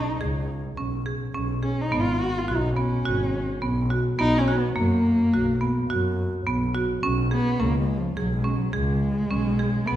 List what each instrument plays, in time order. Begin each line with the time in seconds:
Already playing: cello D#4
0.20 double bass C#2, marimba G#4
0.77 double bass B1, marimba C#4
1.06 marimba G#4
1.34 double bass B1, marimba C#4
1.63 cello C#4, marimba G#4
1.81 cello D#4
1.91 double bass G#1, marimba B3
2.00 cello F4
2.19 cello F#4
2.38 cello F4
2.48 double bass B1, marimba F#4
2.57 cello D#4
2.76 marimba B3, cello C#4
3.05 double bass G#1, marimba F#4
3.62 double bass B1, marimba B3
3.90 marimba F#4
4.19 double bass B1, marimba B3, cello D#4
4.38 cello C#4
4.48 marimba F#4
4.58 cello B3
4.75 double bass F#2, marimba A#3, cello A#3
5.33 double bass B1, marimba F#4
5.61 marimba B3
5.90 double bass F#2, marimba F#4
6.46 double bass B1, marimba B3
6.75 marimba F#4
7.03 double bass B1, marimba C#4
7.31 cello B3, marimba G#4
7.59 double bass C#2, cello A#3, marimba C#4
7.79 cello G#3
7.97 cello F3
8.16 double bass B1, cello F#3, marimba G#4
8.36 cello G#3
8.44 marimba C#4
8.55 cello F#3
8.73 double bass C#2, cello G#3, marimba G#4
9.30 double bass B1, marimba C#4
9.59 marimba G#4
9.87 double bass B1, cello B3, marimba B3